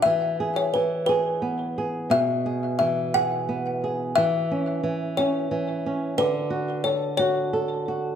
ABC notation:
X:1
M:6/8
L:1/16
Q:3/8=59
K:Emix
V:1 name="Kalimba"
e3 c B2 B4 z2 | e4 e2 f6 | e6 c4 z2 | B4 c2 c6 |]
V:2 name="Nylon-string guitar"
E,2 G2 E,2 G2 B,2 G2 | B,,2 G2 E,2 G2 B,2 G2 | E,2 C2 E,2 C2 E,2 C2 | D,2 F2 A2 F2 A2 F2 |]